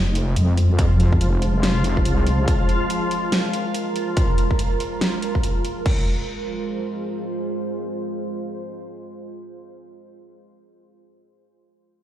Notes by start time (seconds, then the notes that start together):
Already playing: F1 F3 G#3 F4 C5, sub drop
0.15 closed hi-hat
0.36 F2, closed hi-hat
0.57 closed hi-hat
0.79 kick, closed hi-hat
1.00 closed hi-hat
1.13 kick
1.21 F1, closed hi-hat
1.42 closed hi-hat
1.63 snare, closed hi-hat
1.84 closed hi-hat
1.97 kick
2.05 C2, closed hi-hat
2.27 closed hi-hat
2.48 A#4, kick, closed hi-hat
2.69 closed hi-hat
2.90 closed hi-hat
3.11 closed hi-hat
3.32 snare, closed hi-hat
3.53 closed hi-hat
3.75 closed hi-hat
3.96 closed hi-hat
4.17 kick, closed hi-hat
4.38 closed hi-hat
4.51 kick
4.59 closed hi-hat
4.80 closed hi-hat
5.01 snare, closed hi-hat
5.22 closed hi-hat
5.35 kick
5.43 closed hi-hat
5.65 closed hi-hat
5.86 G#3 F4 C5, kick, crash